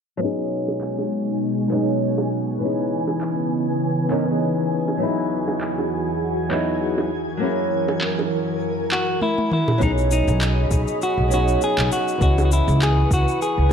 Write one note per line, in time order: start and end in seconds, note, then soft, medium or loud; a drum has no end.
0.17 2.59 B2 medium
0.17 1.66 F#3 medium
0.17 2.59 G#3 medium
0.17 1.67 B3 medium
0.17 1.68 C#4 medium
0.17 2.59 D#4 medium
0.17 9.83 G#5 medium
0.23 1.69 D#4 medium
0.23 1.70 G#4 medium
0.68 high bongo medium
0.81 clap medium
0.99 high bongo soft
1.68 2.56 F#3 medium
1.68 2.57 B3 medium
1.68 2.58 C#4 medium
1.68 clap medium
1.73 2.59 D#4 medium
1.73 2.60 G#4 medium
2.18 high bongo medium
2.58 4.99 C#3 medium
2.58 4.06 E3 medium
2.58 4.99 E3 medium
2.58 4.08 B3 medium
2.58 4.99 B3 medium
2.58 4.08 C#4 medium
2.64 4.09 D#4 medium
2.64 4.10 G#4 medium
3.08 high bongo medium
3.21 clap medium
4.09 4.23 E3 medium
4.09 4.23 B3 medium
4.09 4.24 C#4 medium
4.09 4.24 D#4 medium
4.09 4.24 A#4 medium
4.09 clap medium
4.24 4.96 E3 medium
4.24 4.97 B3 medium
4.24 4.98 C#4 medium
4.30 4.99 D#4 medium
4.30 5.00 G#4 medium
4.88 high bongo soft
4.97 7.09 E2 medium
4.97 6.46 F#3 medium
4.97 6.47 B3 medium
4.97 6.48 D#4 medium
4.97 7.09 F#4 medium
4.97 7.09 G#4 medium
5.03 6.49 E4 medium
5.03 6.50 G#4 medium
5.48 high bongo medium
5.61 clap medium
5.78 high bongo soft
6.49 7.08 F#3 medium
6.49 7.09 B3 medium
6.49 7.09 D#4 medium
6.49 7.10 E4 medium
6.49 7.10 G#4 medium
6.49 clap medium
6.98 high bongo medium
7.10 9.78 F#2 medium
7.10 9.78 E3 medium
7.10 9.78 A#4 medium
7.37 8.86 F#3 medium
7.37 8.87 A#3 medium
7.37 8.88 C#4 medium
7.43 8.89 E4 medium
7.43 8.90 G#4 medium
7.88 high bongo medium
8.01 clap medium
8.19 high bongo medium
8.91 9.22 F#4 medium
8.91 clap medium
9.21 9.50 E4 medium
9.21 high tom medium
9.38 high tom medium
9.51 9.80 E4 medium
9.51 mid tom medium
9.68 mid tom medium
9.68 high bongo medium
9.78 10.20 B1 medium
9.78 11.26 F#3 medium
9.78 11.27 B3 medium
9.78 11.28 C#4 medium
9.78 12.19 G#4 medium
9.78 12.19 D#5 medium
9.78 12.19 B5 medium
9.78 kick loud
9.78 cabasa soft
9.83 9.91 D#4 medium
9.83 11.29 D#4 medium
9.83 11.30 G#4 loud
9.98 cabasa soft
10.11 11.05 D#4 medium
10.11 cabasa medium
10.28 10.65 B1 loud
10.28 cabasa soft
10.41 clap medium
10.41 cabasa soft
10.71 10.83 B1 medium
10.71 kick medium
10.71 cabasa medium
10.88 cabasa soft
11.02 11.33 F#4 medium
11.02 cabasa soft
11.18 11.55 B1 medium
11.28 12.16 F#3 medium
11.28 12.17 B3 medium
11.28 12.18 C#4 medium
11.28 cabasa medium
11.33 12.19 D#4 medium
11.33 11.63 F#4 medium
11.33 12.20 G#4 medium
11.48 cabasa soft
11.61 11.92 G#4 loud
11.61 cabasa soft
11.78 11.87 B1 medium
11.78 clap medium
11.78 cabasa soft
11.92 12.21 F#4 medium
11.92 cabasa medium
12.08 cabasa soft
12.18 12.60 C#2 medium
12.18 13.66 E3 medium
12.18 13.67 B3 medium
12.18 13.68 C#4 medium
12.18 13.73 B4 medium
12.18 13.73 C#6 medium
12.18 kick loud
12.18 cabasa soft
12.22 12.44 F#4 medium
12.22 13.70 G#4 medium
12.22 13.69 D#5 medium
12.38 high bongo medium
12.38 cabasa soft
12.45 12.51 F#4 medium
12.52 12.83 E4 medium
12.52 cabasa medium
12.68 13.05 C#2 loud
12.68 cabasa soft
12.82 13.10 G#4 loud
12.82 clap medium
12.82 cabasa soft
13.11 13.23 C#2 medium
13.11 13.42 F#4 medium
13.11 kick loud
13.11 cabasa medium
13.28 cabasa soft
13.42 13.73 G#4 medium
13.42 cabasa soft
13.58 13.73 C#2 medium
13.69 13.73 E3 medium